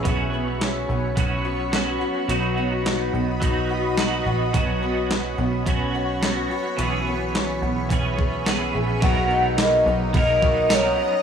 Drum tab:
RD |--------|--------|--------|--------|
HH |x-x-x-x-|x-x-x-x-|x-x-x-x-|x-x-x-x-|
TB |--------|--------|--------|--------|
SD |--o---o-|--o---o-|--o---o-|--o---o-|
BD |o---o---|----o---|o---o---|----oo--|

RD |x-x-x-x-|
HH |--------|
TB |--x---x-|
SD |--o---o-|
BD |o---oo--|